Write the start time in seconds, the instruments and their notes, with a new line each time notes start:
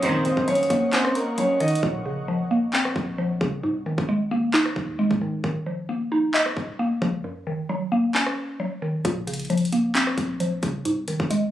Already playing: 808-style bass C#2, ambient pad A#4 D#5
0.02 string section A#1 F#2 D#3, synth pluck F#2, grand piano C4 C5, ambient pad F#5 C#6, closed hi-hat
0.25 synth pluck D#3, grand piano C4 C5, closed hi-hat
0.37 808-style bass F#1, kick
0.48 synth pluck F#3, grand piano C#4 C#5, closed hi-hat
0.55 closed hi-hat
0.63 closed hi-hat
0.70 808-style bass F#1, synth pluck A#3, kick, closed hi-hat
0.92 grand piano C4 C5, synth pluck C#4, clap, closed hi-hat
1.05 cross-stick
1.15 grand piano A#3 A#4, closed hi-hat
1.38 synth pluck F#3, grand piano C#4 C#5, closed hi-hat
1.60 synth pluck D#3, grand piano D#4 D#5, closed hi-hat, open hi-hat
1.68 closed hi-hat
1.75 closed hi-hat
1.83 808-style bass A#1, synth pluck A#2, kick
2.06 synth pluck C#3
2.28 synth pluck F3
2.51 synth pluck A#3
2.73 synth pluck C4, clap
2.85 cross-stick
2.96 808-style bass A#1, kick
3.18 synth pluck F3
3.41 808-style bass C2, synth pluck C#3, kick
3.63 synth pluck G#2
3.86 synth pluck D#3
3.98 808-style bass G#1, kick
4.09 synth pluck G#3
4.31 synth pluck A#3
4.54 synth pluck D#4, clap
4.66 cross-stick
4.76 808-style bass D#2, kick
4.99 synth pluck G#3
5.11 808-style bass G#2, kick
5.21 synth pluck D#3
5.44 808-style bass D#1, synth pluck D#3, kick
5.66 synth pluck F3
5.89 synth pluck A#3
6.12 synth pluck D#4
6.34 synth pluck D#5, clap
6.46 cross-stick
6.57 808-style bass D#1, kick
6.79 synth pluck A#3
7.02 808-style bass C#2, synth pluck F3, kick
7.24 synth pluck F#2
7.47 synth pluck D#3
7.69 synth pluck F#3
7.92 synth pluck A#3
8.15 synth pluck C#4, clap
8.26 cross-stick
8.60 synth pluck F#3
8.82 synth pluck D#3
9.05 808-style bass A#1, synth pluck A#2, kick, closed hi-hat
9.27 synth pluck C#3, closed hi-hat
9.34 closed hi-hat
9.40 closed hi-hat
9.45 closed hi-hat
9.50 synth pluck F3, closed hi-hat
9.58 closed hi-hat
9.65 closed hi-hat
9.72 synth pluck A#3, closed hi-hat
9.95 synth pluck C4, clap, closed hi-hat
10.07 cross-stick
10.18 808-style bass A#1, kick, closed hi-hat
10.40 synth pluck F3, closed hi-hat
10.63 808-style bass C2, synth pluck C#3, kick, closed hi-hat
10.85 synth pluck G#2, closed hi-hat
11.08 synth pluck D#3, closed hi-hat
11.20 808-style bass G#1, kick
11.30 synth pluck G#3, closed hi-hat